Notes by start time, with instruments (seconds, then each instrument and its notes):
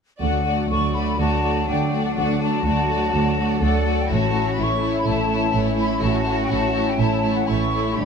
0.20 double bass section D2, french horn section F#3 D4, viola section A3, violin section F#4 D5, flute section F#5
0.45 viola section A3, violin section F#4 D5
0.70 double bass section D2, viola section A3, violin section F#4 D5, flute section C#6
0.94 viola section A3, violin section F#4 D5, flute section B5
1.18 double bass section D2, viola section A3, violin section F#4 D5, cello section F#4, flute section A5
1.43 viola section A3, violin section F#4 D5
1.67 double bass section D2, viola section A3, cello section D4, violin section F#4, flute section G5
1.71 violin section D5
1.90 viola section A3, violin section F#4 D5
2.05 flute section F#5
2.17 double bass section D2, viola section A3, violin section F#4 D5, flute section F#5
2.41 viola section A3, violin section F#4 D5, flute section A5
2.64 double bass section D2, viola section A3, cello section F#4, violin section F#4 D5
2.90 viola section A3, violin section F#4 D5
3.13 double bass section D2, viola section A3, violin section F#4 D5
3.37 viola section A3, violin section F#4 D5
3.61 double bass section D2, viola section A3, violin section F#4 D5, cello section A4, flute section F#5
3.85 viola section A3, violin section F#4 D5
4.01 flute section G5
4.09 double bass section A1, timpani A2, french horn section E3 C#4, viola section A3, violin section E4 C#5, cello section F#4
4.14 flute section A5
4.32 viola section A3, violin section E4
4.37 violin section C#5
4.50 flute section B5
4.56 double bass section A1, viola section A3, violin section E4, cello section E4
4.61 violin section C#5, flute section C#6
4.78 viola section A3, violin section E4
4.84 violin section C#5
4.99 flute section B5
5.04 double bass section A1, viola section A3, violin section E4
5.08 violin section C#5, flute section A5
5.28 viola section A3, violin section E4
5.32 violin section C#5
5.53 double bass section A1, viola section A3, violin section E4 C#5
5.76 viola section A3, violin section E4 C#5
5.80 flute section B5
5.99 double bass section A1, viola section A3, violin section E4 C#5, cello section F#4, flute section A5
6.25 viola section A3, violin section E4 C#5
6.42 flute section G5
6.50 double bass section A1, viola section A3, violin section E4 C#5, flute section A5
6.75 viola section A3, violin section E4 C#5
6.89 flute section G5
6.99 double bass section A1, viola section A3, cello section E4, violin section E4 C#5, flute section A5
7.23 viola section A3, violin section E4 C#5
7.36 flute section F#5
7.46 double bass section A1, viola section A3, violin section E4 C#5, cello section E4, flute section C#6
7.72 viola section A3, violin section E4 C#5
7.95 double bass section G1, french horn section G3 D4, cello section G4, flute section B5